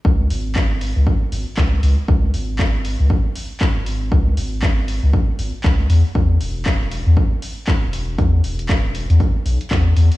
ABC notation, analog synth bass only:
X:1
M:4/4
L:1/16
Q:"Swing 16ths" 1/4=118
K:C#m
V:1 name="Analog synth bass" clef=bass
C,,2 G,,,4- G,,, C,, z2 G,,, z C,,2 C,, z | C,,2 G,,,4- G,,, C,, z4 z G,,,3 | C,,2 G,,,4- G,,, C,, z2 G,,, z C,,2 E,, z | E,,2 E,,,4- E,,, E,, z4 z E,,,3 |
E,,2 E,,,4- E,,, E,, z2 B,,, z E,,2 E,, z |]